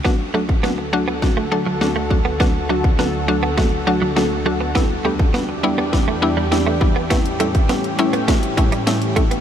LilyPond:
<<
  \new Staff \with { instrumentName = "Synth pluck" } { \time 4/4 \key d \major \tempo 4 = 102 <fis a d' fis'>8 <fis a d' fis'>8 <fis a d' fis'>8 <fis a d' fis'>8 <fis a d' fis'>8 <fis a d' a'>8 <fis a d' fis'>8 <fis a d' fis'>8 | <fis a d' fis'>8 <fis a d' fis'>8 <fis a d' fis'>8 <fis a d' fis'>8 <fis a d' fis'>8 <fis a d' fis'>8 <fis a d' fis'>8 <fis a d' fis'>8 | <g b d' e'>8 <g b d' g'>8 <g b d' fis'>8 <g b d' e'>8 <g b d' e'>8 <g b d' e'>8 <g b d' e'>8 <g b d' e'>8 | <g a cis' e'>8 <g a cis' e'>8 <g a cis' e'>8 <g a cis' e'>8 <g a cis' fis'>8 <g a cis' e'>8 <g a cis' e'>8 <g a cis' e'>8 | }
  \new Staff \with { instrumentName = "Clean electric guitar" } { \time 4/4 \key d \major b16 r16 a16 r16 b16 r8 b16 r16 a16 r16 fis16 r16 a16 r16 b16 | b16 r16 a16 r16 b16 r8 b16 a16 r8 fis16 r8 a16 b16 | b16 r16 a16 r16 b16 r8 b16 r16 a16 r16 g16 r16 a16 r16 b16 | b16 r16 a16 r16 b16 r8 b16 a16 r8 g16 r8 a16 b16 | }
  \new Staff \with { instrumentName = "Analog synth pad" } { \clef bass \time 4/4 \key d \major << { <d a'>1~ | <d a'>1 | <e g'>1~ | <e g'>1 | } \\ { <d, fis'>1~ | <d, fis'>1 | <e, d'>1 | <a, cis'>1 | } >> }
  \new DrumStaff \with { instrumentName = "Drums" } \drummode { \time 4/4 <bd sn>8. bd16 sn4 <bd sn>4 sn8 bd8 | <bd sn>8. bd16 sn4 <bd sn>4 sn4 | <bd sn>8. bd16 sn4 <bd sn>4 sn8 bd8 | <hh bd sn>16 hh16 hh16 <hh bd>16 <hh sn>16 hh16 hh16 hh16 <hh bd sn>16 hh16 <hh bd>16 hh16 <hh sn>16 hh16 <hh bd>16 hh16 | }
>>